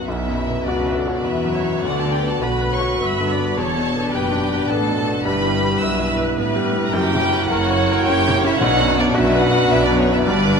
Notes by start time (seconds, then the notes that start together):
0.05 B1 B2 B3 E4 F#4 E5
0.29 F#2
0.47 B3
0.65 C#2 C#3 D4 F#4 B4 D5
0.88 B4 E5
0.96 A4 D5
1.07 F#4 C#5
1.16 D5
1.24 E2 E3 B3 E4 B4 E5
1.44 F#2
1.54 C#5
1.65 B3
1.83 D2 D3 F#4 D5 F#5
1.98 A4 A5
2.03 D3
2.13 G4 G5
2.23 B3
2.28 A4 A5
2.41 B1 B2 F#4 B4 B5
2.61 B4
2.72 C#5 C#6
2.81 F#4
2.99 G1 G2 B3 B4 E5 B5
3.20 D3
3.31 D5
3.39 B3
3.57 E1 E2 B3 D4 A4 C#5 A5
3.77 B2
3.95 B3
4.11 F#1 F#2 G4 B4 G5
4.31 D4
4.51 B4
4.69 A1 A2 B3 A4 A5
4.87 B2
5.07 B3
5.24 G1 G2 E4 G4 B4 B5
5.42 G3
5.62 B3
5.80 B1 B2 B4 E5 E6
5.99 E4
6.17 B4
6.38 A1 A2 B3 B4
6.56 G3
6.74 B3
6.86 A#5
6.92 F#1 F#2 A#3 E4 G4 A#4 G5
7.14 C#3
7.21 B4
7.33 C#4
7.48 F#1 F#2 A#4 C#5 F#5
7.52 F#4
7.70 C#5
7.91 A#4
8.04 F#1 F#2 G4 G5
8.09 C#4
8.28 C#3
8.44 C#4 E4 E5
8.59 B1 B2 B3 D4 F#4 F#5
8.80 F#2
8.98 B3 D4 D5
9.14 B1 B2 E4 F#4 B4 E5
9.35 B4
9.42 F#4 F#5
9.52 F#4
9.71 B1 B2 B3 E4 E5
9.85 D4 D5
9.91 F#2
9.98 C#4 C#5
10.09 B3 E5
10.13 E4
10.24 G1 G2 D4 B4 D5
10.45 B3